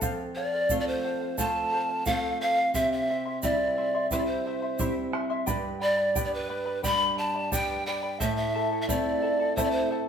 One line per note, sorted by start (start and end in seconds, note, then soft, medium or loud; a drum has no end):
0.01 2.70 F2 medium
0.01 0.35 A4 medium
0.01 0.35 C5 medium
0.01 0.36 F5 medium
0.01 bombo low medium
0.01 shaker medium
0.35 0.53 A4 medium
0.35 0.53 C5 medium
0.35 0.80 D5 loud
0.35 0.52 F5 medium
0.53 0.70 C5 soft
0.53 0.70 F5 soft
0.69 1.36 A3 soft
0.69 1.36 C4 soft
0.69 1.36 F4 soft
0.69 1.03 A4 medium
0.69 1.04 C5 medium
0.69 1.04 F5 medium
0.69 bombo low medium
0.69 shaker medium
0.80 0.89 D5 medium
0.87 1.40 C5 medium
1.04 1.21 A4 medium
1.04 1.22 C5 medium
1.04 1.20 F5 medium
1.21 1.37 C5 soft
1.21 1.38 F5 soft
1.38 2.04 A3 soft
1.38 2.04 C4 soft
1.38 2.05 F4 soft
1.38 1.71 A4 medium
1.38 1.72 C5 medium
1.38 1.72 F5 medium
1.38 2.06 A5 medium
1.38 bombo low medium
1.38 shaker medium
1.72 1.89 A4 medium
1.72 1.89 C5 medium
1.72 1.88 F5 medium
1.89 2.05 C5 soft
1.89 2.06 F5 soft
2.06 2.72 A3 soft
2.06 2.73 C4 soft
2.06 2.73 F4 soft
2.06 2.39 A4 medium
2.06 2.40 C5 medium
2.06 2.38 F5 medium
2.06 2.40 F5 medium
2.06 bombo low medium
2.06 shaker medium
2.40 2.57 A4 medium
2.40 2.57 C5 medium
2.40 2.73 F5 medium
2.40 2.56 F5 medium
2.57 2.74 C5 soft
2.57 2.74 F5 soft
2.74 5.44 C3 medium
2.74 3.08 E4 medium
2.74 3.09 G4 medium
2.74 3.08 C5 medium
2.74 2.90 E5 medium
2.74 3.09 E5 medium
2.74 3.09 C6 medium
2.74 bombo low medium
2.74 shaker medium
2.92 3.40 E5 medium
3.09 3.26 E4 medium
3.09 3.26 C5 medium
3.09 3.26 E5 medium
3.09 3.24 C6 medium
3.26 3.42 E4 soft
3.26 3.43 E5 soft
3.26 3.43 C6 medium
3.43 4.09 G3 soft
3.43 4.09 C4 soft
3.43 3.76 E4 medium
3.43 4.09 E4 soft
3.43 3.77 G4 medium
3.43 3.75 C5 medium
3.43 4.07 D5 medium
3.43 3.77 E5 medium
3.43 3.77 C6 medium
3.43 bombo low medium
3.43 shaker medium
3.77 3.94 E4 medium
3.77 3.94 C5 soft
3.77 3.94 E5 medium
3.77 3.93 C6 medium
3.95 4.11 E4 soft
3.95 4.11 E5 soft
3.95 4.11 C6 medium
4.11 4.77 G3 soft
4.11 4.78 C4 soft
4.11 4.45 E4 medium
4.11 4.78 E4 soft
4.11 4.45 G4 medium
4.11 4.19 C5 medium
4.11 4.45 C5 medium
4.11 4.45 E5 medium
4.11 4.46 C6 medium
4.11 bombo low medium
4.11 shaker medium
4.18 4.27 D5 medium
4.26 5.14 C5 medium
4.46 4.62 E4 medium
4.46 4.63 C5 medium
4.46 4.62 E5 medium
4.46 4.61 C6 medium
4.62 4.78 E4 soft
4.62 4.79 E5 soft
4.62 4.79 C6 soft
4.79 5.45 G3 soft
4.79 5.46 C4 soft
4.79 5.12 E4 medium
4.79 5.46 E4 medium
4.79 5.13 G4 medium
4.79 5.11 C5 medium
4.79 5.12 E5 medium
4.79 5.13 C6 medium
4.79 bombo low medium
4.79 shaker medium
5.12 5.30 E4 medium
5.12 5.30 C5 medium
5.12 5.29 E5 medium
5.12 5.29 C6 medium
5.12 bombo rim medium
5.30 5.46 E4 medium
5.30 5.47 E5 medium
5.30 5.47 C6 medium
5.46 8.17 G2 medium
5.46 5.81 G4 medium
5.46 5.80 B4 medium
5.46 5.80 D5 medium
5.46 5.79 G5 medium
5.46 5.80 B5 medium
5.46 bombo low medium
5.46 shaker medium
5.80 5.98 B4 medium
5.80 5.97 D5 medium
5.80 6.23 D5 medium
5.80 5.98 G5 medium
5.80 5.96 B5 medium
5.97 6.15 B4 soft
5.97 6.14 D5 soft
5.97 6.15 B5 soft
6.15 6.82 G3 soft
6.15 6.82 B3 soft
6.15 6.82 D4 medium
6.15 6.50 G4 medium
6.15 6.48 B4 medium
6.15 6.48 D5 medium
6.15 6.47 G5 medium
6.15 6.49 B5 medium
6.15 bombo low medium
6.15 shaker medium
6.25 6.35 D5 medium
6.34 6.84 B4 medium
6.49 6.66 B4 medium
6.49 6.65 D5 medium
6.49 6.66 G5 medium
6.49 6.65 B5 medium
6.66 6.82 B4 soft
6.66 6.83 D5 soft
6.66 6.83 B5 medium
6.83 7.50 G3 soft
6.83 7.51 B3 soft
6.83 7.51 D4 soft
6.83 7.18 G4 medium
6.83 7.17 B4 medium
6.83 7.17 D5 medium
6.83 7.16 G5 medium
6.83 7.18 B5 medium
6.83 7.16 B5 loud
6.83 bombo low medium
6.83 shaker medium
7.18 7.35 B4 medium
7.18 7.34 D5 medium
7.18 7.35 G5 medium
7.18 7.54 A5 medium
7.18 7.33 B5 medium
7.35 7.51 B4 soft
7.35 7.51 D5 soft
7.35 7.51 B5 soft
7.51 8.19 G3 soft
7.51 8.19 B3 soft
7.51 8.19 D4 medium
7.51 7.86 G4 medium
7.51 7.86 B4 medium
7.51 7.86 D5 medium
7.51 7.85 G5 medium
7.51 7.86 G5 medium
7.51 7.86 B5 medium
7.51 bombo low medium
7.51 shaker loud
7.86 8.03 B4 medium
7.86 8.02 D5 medium
7.86 8.21 G5 medium
7.86 8.03 G5 medium
7.86 8.01 B5 medium
8.03 8.20 B4 soft
8.03 8.20 D5 medium
8.03 8.20 B5 medium
8.20 10.09 A2 medium
8.20 8.53 E4 medium
8.20 8.54 A4 medium
8.20 8.54 C5 medium
8.20 8.53 E5 medium
8.20 8.36 E5 medium
8.20 8.54 A5 medium
8.20 bombo low medium
8.20 shaker medium
8.36 8.81 E5 medium
8.54 8.71 E4 medium
8.54 8.71 A4 medium
8.54 8.71 E5 medium
8.54 8.70 A5 medium
8.72 8.88 E4 soft
8.72 8.88 A4 soft
8.72 8.88 A5 medium
8.81 8.90 E5 medium
8.88 9.55 A3 soft
8.88 9.55 C4 soft
8.88 9.21 E4 medium
8.88 9.55 E4 soft
8.88 9.22 A4 medium
8.88 9.23 C5 medium
8.88 9.55 D5 medium
8.88 9.21 E5 medium
8.88 9.22 A5 medium
8.88 bombo low medium
8.88 shaker medium
9.22 9.40 E4 medium
9.22 9.39 A4 medium
9.22 9.39 E5 soft
9.22 9.38 A5 medium
9.39 9.56 E4 soft
9.39 9.56 A4 soft
9.39 9.57 A5 soft
9.56 10.09 A3 soft
9.56 10.09 C4 soft
9.56 9.90 E4 medium
9.56 10.09 E4 soft
9.56 9.90 A4 medium
9.56 9.66 C5 medium
9.56 9.91 C5 medium
9.56 9.89 E5 medium
9.56 9.91 A5 medium
9.56 bombo low medium
9.56 shaker medium
9.64 9.72 D5 medium
9.71 9.98 C5 medium
9.90 10.08 E4 medium
9.90 10.07 A4 medium
9.90 10.07 E5 medium
9.90 10.06 A5 medium